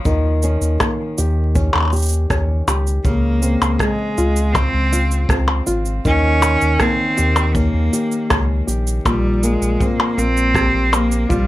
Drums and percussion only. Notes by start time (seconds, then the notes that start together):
0.05 kick, shaker
0.43 shaker
0.62 shaker
0.80 kick, cross-stick, percussion blips, shaker
1.18 shaker
1.55 kick, shaker
1.73 percussion blips
1.76 percussion blips
1.78 percussion blips
1.80 percussion blips
1.83 percussion blips
1.85 percussion blips
1.88 percussion blips
1.90 percussion blips, shaker
1.96 shaker
1.99 shaker
2.02 shaker
2.06 shaker
2.09 shaker
2.12 shaker
2.30 kick, cross-stick, shaker
2.68 percussion blips, shaker
2.87 shaker
3.05 kick, shaker
3.43 shaker
3.62 percussion blips, shaker
3.79 kick, cross-stick, shaker
4.18 shaker
4.36 shaker
4.55 kick, percussion blips, shaker
4.93 shaker
5.11 shaker
5.29 kick, cross-stick, shaker
5.48 percussion blips
5.67 shaker
5.85 shaker
6.05 kick, shaker
6.42 percussion blips, shaker
6.61 shaker
6.80 kick, cross-stick, shaker
7.18 shaker
7.36 percussion blips, shaker
7.55 kick, shaker
7.93 shaker
8.12 shaker
8.30 kick, cross-stick, percussion blips, shaker
8.68 shaker
8.87 shaker
9.06 kick, percussion blips, shaker
9.43 shaker
9.62 shaker
9.80 kick, shaker
10.00 percussion blips
10.19 shaker
10.37 shaker
10.55 kick, cross-stick, shaker
10.93 percussion blips, shaker
11.12 shaker
11.30 kick, shaker